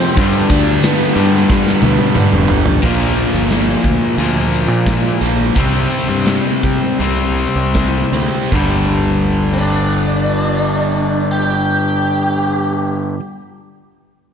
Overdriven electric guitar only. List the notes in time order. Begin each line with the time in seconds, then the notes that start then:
Already playing: F2 C3 F3
0.16 G2 D3 G3
1.16 D3 G3
1.20 G2
2.83 A#2 F3 A#3
4.18 A#2 F3 A#3
5.55 C3 G3 C4
6.99 C3 G3 C4
8.52 G2 D3 G3